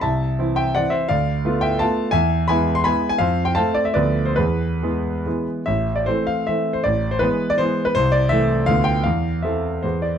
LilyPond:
<<
  \new Staff \with { instrumentName = "Grand piano" } { \time 3/4 \key a \dorian \tempo 4 = 161 <e'' a''>4. <e'' g''>8 <d'' fis''>8 <c'' e''>8 | \key a \minor <d'' f''>4. <e'' g''>8 <f'' a''>4 | <e'' gis''>4 <gis'' b''>8. c'''16 <gis'' b''>8. gis''16 | <c'' f''>8. g''16 <f'' a''>8 d''16 e''16 <b' d''>8. c''16 |
<gis' b'>2~ <gis' b'>8 r8 | e''8. d''16 c''8 f''8 e''8. c''16 | d''8. c''16 b'8. d''16 c''8. b'16 | c''8 d''8 e''4 f''8 g''8 |
f''4 e''4 c''8 d''8 | }
  \new Staff \with { instrumentName = "Grand piano" } { \time 3/4 \key a \dorian c,4 <e c' e'>4 <e c' e'>4 | \key a \minor d,4 <a b f'>4 <a b f'>4 | e,4 <gis b e'>4 <gis b e'>4 | f,4 <a c'>4 <d, f a b>4 |
e,4 <e gis b>4 <e gis b>4 | a,,4 <e a c'>4 <e a c'>4 | a,,4 <e gis b>4 <e gis b>4 | c,4 <e a c'>4 <d, d b f'>4 |
e,4 <e c' a'>4 <e, e b gis'>4 | }
>>